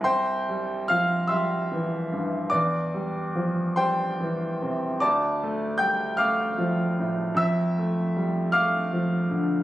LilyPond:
<<
  \new Staff \with { instrumentName = "Grand piano" } { \time 6/8 \key c \major \tempo 4. = 49 <c'' g'' c'''>4 <f'' f'''>8 <e'' c''' e'''>4. | <d'' d'''>4. <c'' g'' c'''>4. | <d'' a'' d'''>4 <g'' g'''>8 <f'' d''' f'''>4. | <e'' e'''>4. <f'' d''' f'''>4. | }
  \new Staff \with { instrumentName = "Grand piano" } { \clef bass \time 6/8 \key c \major c,8 g8 f8 g8 e8 g,8 | e,8 g8 f8 g8 e8 c8 | d,8 a8 g8 a8 f8 a,8 | f,8 a8 g8 a8 f8 d8 | }
>>